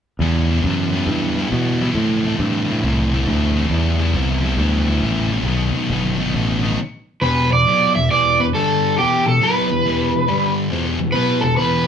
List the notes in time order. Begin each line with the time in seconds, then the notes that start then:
0.19 E2 E3 G3 B3 E4
0.50 E3 G3 B3 E4
0.64 F#2 E3 G3 B3 E4
0.94 E3 G3 B3 E4
1.07 G2 E3 G3 B3 E4
1.37 E3 G3 B3 E4
1.52 B2 E3 G3 B3 E4
1.81 E3 G3 B3 E4
1.95 A2 E3 A3 C4 E4
2.24 A2 E3 A3 C4 E4
2.39 G2 A2 E3 A3 C4 E4
2.69 A2 E3 A3 C4 E4
2.84 C2 A2 E3 A3 C4 E4
3.13 A2 E3 A3 C4 E4
3.27 D2 A2 E3 A3 C4 E4
3.56 A2 E3 A3 C4 E4
3.70 E2 E3 G3 B3 E4
4.00 E3 G3 B3 E4
4.14 C2 E3 G3 B3 E4
4.42 E3 G3 B3 E4
4.57 D2 E3 G3 B3 E4
4.87 E3 G3 B3 E4
5.02 A1 E3 G3 B3 E4
5.31 E3 G3 B3 E4
5.43 B1 B2 D#3
5.47 F#3 B3 D#4
5.74 B2 D#3 F#3 B3 D#4, muted fingered electric bass stroke
5.90 G1 B2 D#3 F#3 B3 D#4
6.18 B2 D#3 F#3 B3 D#4
6.34 A1 B2 D#3 F#3 B3 D#4
6.62 B2 D#3 F#3 B3 D#4
7.20 E2 B2 E3 B3 E4 G4 B4
7.51 E2 B2 D5
7.67 B2 F#3 B3
7.95 E2 B2 E5
8.10 E2 B2 E3 D5
8.40 E2 B2 B4
8.53 G2 D3 G3 D4 G4 A4 D5
8.97 E2 B2 E3 B3 E4 G4 B4
9.26 E2 B2 A4
9.41 B2 F#3 B3 B4
9.70 E2 B2
9.85 E2 B2 E3
10.13 E2 B2
10.28 G2 D3 G3 D4 G4 D5
10.71 E2 B2 E3 C4 F4 G#4 C5
10.85 B3 E4 G4 B4
10.99 E2 B2
11.12 B2 F#3 B3 B4
11.41 E2 B2 A4
11.57 E2 B2 E3 B4